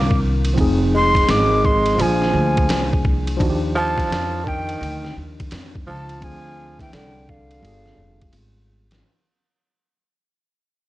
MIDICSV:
0, 0, Header, 1, 6, 480
1, 0, Start_track
1, 0, Tempo, 705882
1, 388, Time_signature, 4, 2, 24, 8
1, 7403, End_track
2, 0, Start_track
2, 0, Title_t, "Flute"
2, 0, Program_c, 0, 73
2, 0, Note_on_c, 0, 86, 109
2, 128, Note_off_c, 0, 86, 0
2, 650, Note_on_c, 0, 84, 105
2, 886, Note_on_c, 0, 86, 105
2, 896, Note_off_c, 0, 84, 0
2, 1124, Note_on_c, 0, 84, 89
2, 1134, Note_off_c, 0, 86, 0
2, 1370, Note_on_c, 0, 80, 91
2, 1380, Note_off_c, 0, 84, 0
2, 2079, Note_off_c, 0, 80, 0
2, 2565, Note_on_c, 0, 81, 119
2, 3047, Note_on_c, 0, 79, 95
2, 3057, Note_off_c, 0, 81, 0
2, 3518, Note_off_c, 0, 79, 0
2, 4005, Note_on_c, 0, 81, 102
2, 4244, Note_on_c, 0, 80, 110
2, 4254, Note_off_c, 0, 81, 0
2, 4629, Note_off_c, 0, 80, 0
2, 4633, Note_on_c, 0, 79, 79
2, 4709, Note_off_c, 0, 79, 0
2, 4731, Note_on_c, 0, 79, 87
2, 4961, Note_on_c, 0, 77, 91
2, 4971, Note_off_c, 0, 79, 0
2, 5675, Note_off_c, 0, 77, 0
2, 7403, End_track
3, 0, Start_track
3, 0, Title_t, "Tine electric piano"
3, 0, Program_c, 1, 4
3, 0, Note_on_c, 1, 51, 55
3, 0, Note_on_c, 1, 60, 58
3, 0, Note_on_c, 1, 62, 62
3, 0, Note_on_c, 1, 70, 66
3, 351, Note_off_c, 1, 51, 0
3, 358, Note_off_c, 1, 60, 0
3, 365, Note_off_c, 1, 62, 0
3, 365, Note_on_c, 1, 53, 76
3, 374, Note_off_c, 1, 70, 0
3, 381, Note_on_c, 1, 60, 67
3, 397, Note_on_c, 1, 63, 72
3, 412, Note_on_c, 1, 68, 80
3, 1317, Note_off_c, 1, 53, 0
3, 1325, Note_off_c, 1, 60, 0
3, 1326, Note_on_c, 1, 53, 64
3, 1334, Note_off_c, 1, 63, 0
3, 1342, Note_off_c, 1, 68, 0
3, 1342, Note_on_c, 1, 58, 62
3, 1359, Note_on_c, 1, 62, 60
3, 1375, Note_on_c, 1, 68, 63
3, 2278, Note_off_c, 1, 53, 0
3, 2286, Note_off_c, 1, 58, 0
3, 2289, Note_on_c, 1, 53, 80
3, 2293, Note_off_c, 1, 62, 0
3, 2301, Note_on_c, 1, 62, 71
3, 2303, Note_off_c, 1, 68, 0
3, 2316, Note_on_c, 1, 63, 60
3, 2331, Note_on_c, 1, 66, 64
3, 2376, Note_off_c, 1, 66, 0
3, 2377, Note_on_c, 1, 67, 85
3, 4192, Note_off_c, 1, 53, 0
3, 4198, Note_off_c, 1, 62, 0
3, 4201, Note_on_c, 1, 52, 51
3, 4205, Note_off_c, 1, 63, 0
3, 4216, Note_on_c, 1, 60, 53
3, 4232, Note_on_c, 1, 62, 56
3, 4236, Note_off_c, 1, 67, 0
3, 4246, Note_on_c, 1, 53, 60
3, 4249, Note_on_c, 1, 68, 70
3, 4271, Note_off_c, 1, 52, 0
3, 5163, Note_off_c, 1, 60, 0
3, 5166, Note_on_c, 1, 55, 69
3, 5171, Note_off_c, 1, 62, 0
3, 5178, Note_off_c, 1, 53, 0
3, 5180, Note_off_c, 1, 68, 0
3, 5181, Note_on_c, 1, 59, 55
3, 5194, Note_on_c, 1, 65, 53
3, 5211, Note_on_c, 1, 68, 69
3, 6118, Note_off_c, 1, 55, 0
3, 6126, Note_off_c, 1, 59, 0
3, 6132, Note_off_c, 1, 65, 0
3, 6141, Note_off_c, 1, 68, 0
3, 7403, End_track
4, 0, Start_track
4, 0, Title_t, "Tenor saxophone"
4, 0, Program_c, 2, 66
4, 0, Note_on_c, 2, 58, 87
4, 124, Note_off_c, 2, 58, 0
4, 640, Note_on_c, 2, 56, 84
4, 880, Note_off_c, 2, 56, 0
4, 880, Note_on_c, 2, 56, 98
4, 1117, Note_off_c, 2, 56, 0
4, 1117, Note_on_c, 2, 56, 92
4, 1358, Note_on_c, 2, 53, 72
4, 1369, Note_off_c, 2, 56, 0
4, 2073, Note_off_c, 2, 53, 0
4, 2552, Note_on_c, 2, 53, 105
4, 3026, Note_on_c, 2, 51, 86
4, 3036, Note_off_c, 2, 53, 0
4, 3507, Note_off_c, 2, 51, 0
4, 3991, Note_on_c, 2, 53, 86
4, 4229, Note_off_c, 2, 53, 0
4, 4229, Note_on_c, 2, 53, 90
4, 4618, Note_off_c, 2, 53, 0
4, 4623, Note_on_c, 2, 52, 73
4, 4703, Note_off_c, 2, 52, 0
4, 4709, Note_on_c, 2, 50, 78
4, 4950, Note_off_c, 2, 50, 0
4, 4950, Note_on_c, 2, 50, 71
4, 5669, Note_off_c, 2, 50, 0
4, 7403, End_track
5, 0, Start_track
5, 0, Title_t, "Upright bass"
5, 0, Program_c, 3, 32
5, 0, Note_on_c, 3, 36, 97
5, 392, Note_on_c, 3, 29, 98
5, 402, Note_off_c, 3, 36, 0
5, 846, Note_off_c, 3, 29, 0
5, 872, Note_on_c, 3, 32, 85
5, 1326, Note_off_c, 3, 32, 0
5, 1349, Note_on_c, 3, 34, 100
5, 1577, Note_off_c, 3, 34, 0
5, 1587, Note_on_c, 3, 38, 101
5, 1816, Note_off_c, 3, 38, 0
5, 1829, Note_on_c, 3, 36, 78
5, 2285, Note_off_c, 3, 36, 0
5, 2313, Note_on_c, 3, 39, 99
5, 2767, Note_off_c, 3, 39, 0
5, 2791, Note_on_c, 3, 41, 81
5, 3246, Note_off_c, 3, 41, 0
5, 3270, Note_on_c, 3, 38, 99
5, 3497, Note_off_c, 3, 38, 0
5, 3511, Note_on_c, 3, 39, 82
5, 3738, Note_off_c, 3, 39, 0
5, 3751, Note_on_c, 3, 41, 85
5, 3978, Note_off_c, 3, 41, 0
5, 3992, Note_on_c, 3, 37, 93
5, 4218, Note_off_c, 3, 37, 0
5, 4229, Note_on_c, 3, 38, 101
5, 4685, Note_off_c, 3, 38, 0
5, 4709, Note_on_c, 3, 36, 94
5, 5165, Note_off_c, 3, 36, 0
5, 5185, Note_on_c, 3, 31, 96
5, 5414, Note_off_c, 3, 31, 0
5, 5423, Note_on_c, 3, 29, 85
5, 5654, Note_off_c, 3, 29, 0
5, 5663, Note_on_c, 3, 32, 89
5, 6122, Note_off_c, 3, 32, 0
5, 7403, End_track
6, 0, Start_track
6, 0, Title_t, "Drums"
6, 73, Note_on_c, 9, 36, 93
6, 141, Note_off_c, 9, 36, 0
6, 304, Note_on_c, 9, 51, 55
6, 372, Note_off_c, 9, 51, 0
6, 392, Note_on_c, 9, 36, 94
6, 394, Note_on_c, 9, 51, 69
6, 460, Note_off_c, 9, 36, 0
6, 462, Note_off_c, 9, 51, 0
6, 782, Note_on_c, 9, 36, 105
6, 788, Note_on_c, 9, 38, 41
6, 792, Note_on_c, 9, 51, 63
6, 850, Note_off_c, 9, 36, 0
6, 856, Note_off_c, 9, 38, 0
6, 860, Note_off_c, 9, 51, 0
6, 875, Note_on_c, 9, 38, 116
6, 876, Note_on_c, 9, 44, 49
6, 876, Note_on_c, 9, 51, 64
6, 943, Note_off_c, 9, 38, 0
6, 944, Note_off_c, 9, 44, 0
6, 944, Note_off_c, 9, 51, 0
6, 1119, Note_on_c, 9, 36, 90
6, 1187, Note_off_c, 9, 36, 0
6, 1262, Note_on_c, 9, 51, 48
6, 1330, Note_off_c, 9, 51, 0
6, 1357, Note_on_c, 9, 51, 71
6, 1425, Note_off_c, 9, 51, 0
6, 1510, Note_on_c, 9, 38, 30
6, 1578, Note_off_c, 9, 38, 0
6, 1749, Note_on_c, 9, 51, 59
6, 1752, Note_on_c, 9, 36, 108
6, 1817, Note_off_c, 9, 51, 0
6, 1820, Note_off_c, 9, 36, 0
6, 1829, Note_on_c, 9, 44, 51
6, 1829, Note_on_c, 9, 51, 71
6, 1837, Note_on_c, 9, 38, 120
6, 1897, Note_off_c, 9, 44, 0
6, 1897, Note_off_c, 9, 51, 0
6, 1905, Note_off_c, 9, 38, 0
6, 1994, Note_on_c, 9, 36, 98
6, 2062, Note_off_c, 9, 36, 0
6, 2073, Note_on_c, 9, 36, 103
6, 2141, Note_off_c, 9, 36, 0
6, 2226, Note_on_c, 9, 51, 52
6, 2294, Note_off_c, 9, 51, 0
6, 2313, Note_on_c, 9, 36, 109
6, 2316, Note_on_c, 9, 51, 76
6, 2381, Note_off_c, 9, 36, 0
6, 2384, Note_off_c, 9, 51, 0
6, 2704, Note_on_c, 9, 36, 98
6, 2713, Note_on_c, 9, 38, 34
6, 2717, Note_on_c, 9, 51, 66
6, 2772, Note_off_c, 9, 36, 0
6, 2781, Note_off_c, 9, 38, 0
6, 2785, Note_off_c, 9, 51, 0
6, 2805, Note_on_c, 9, 38, 122
6, 2806, Note_on_c, 9, 44, 46
6, 2806, Note_on_c, 9, 51, 69
6, 2873, Note_off_c, 9, 38, 0
6, 2874, Note_off_c, 9, 44, 0
6, 2874, Note_off_c, 9, 51, 0
6, 3040, Note_on_c, 9, 36, 84
6, 3108, Note_off_c, 9, 36, 0
6, 3188, Note_on_c, 9, 51, 53
6, 3256, Note_off_c, 9, 51, 0
6, 3284, Note_on_c, 9, 51, 69
6, 3352, Note_off_c, 9, 51, 0
6, 3432, Note_on_c, 9, 38, 34
6, 3500, Note_off_c, 9, 38, 0
6, 3671, Note_on_c, 9, 51, 64
6, 3672, Note_on_c, 9, 36, 110
6, 3739, Note_off_c, 9, 51, 0
6, 3740, Note_off_c, 9, 36, 0
6, 3746, Note_on_c, 9, 44, 47
6, 3746, Note_on_c, 9, 51, 78
6, 3754, Note_on_c, 9, 38, 122
6, 3814, Note_off_c, 9, 44, 0
6, 3814, Note_off_c, 9, 51, 0
6, 3822, Note_off_c, 9, 38, 0
6, 3912, Note_on_c, 9, 36, 102
6, 3980, Note_off_c, 9, 36, 0
6, 4143, Note_on_c, 9, 51, 54
6, 4211, Note_off_c, 9, 51, 0
6, 4229, Note_on_c, 9, 36, 102
6, 4230, Note_on_c, 9, 51, 82
6, 4297, Note_off_c, 9, 36, 0
6, 4298, Note_off_c, 9, 51, 0
6, 4619, Note_on_c, 9, 36, 105
6, 4623, Note_on_c, 9, 38, 40
6, 4626, Note_on_c, 9, 51, 68
6, 4687, Note_off_c, 9, 36, 0
6, 4691, Note_off_c, 9, 38, 0
6, 4694, Note_off_c, 9, 51, 0
6, 4714, Note_on_c, 9, 38, 117
6, 4715, Note_on_c, 9, 44, 49
6, 4715, Note_on_c, 9, 51, 66
6, 4782, Note_off_c, 9, 38, 0
6, 4783, Note_off_c, 9, 44, 0
6, 4783, Note_off_c, 9, 51, 0
6, 4956, Note_on_c, 9, 36, 89
6, 5024, Note_off_c, 9, 36, 0
6, 5104, Note_on_c, 9, 51, 46
6, 5172, Note_off_c, 9, 51, 0
6, 5199, Note_on_c, 9, 51, 69
6, 5267, Note_off_c, 9, 51, 0
6, 5344, Note_on_c, 9, 38, 34
6, 5412, Note_off_c, 9, 38, 0
6, 5586, Note_on_c, 9, 51, 61
6, 5589, Note_on_c, 9, 36, 97
6, 5654, Note_off_c, 9, 51, 0
6, 5657, Note_off_c, 9, 36, 0
6, 5662, Note_on_c, 9, 44, 55
6, 5662, Note_on_c, 9, 51, 76
6, 5730, Note_off_c, 9, 44, 0
6, 5730, Note_off_c, 9, 51, 0
6, 6058, Note_on_c, 9, 51, 57
6, 6065, Note_on_c, 9, 38, 76
6, 6126, Note_off_c, 9, 51, 0
6, 6133, Note_off_c, 9, 38, 0
6, 7403, End_track
0, 0, End_of_file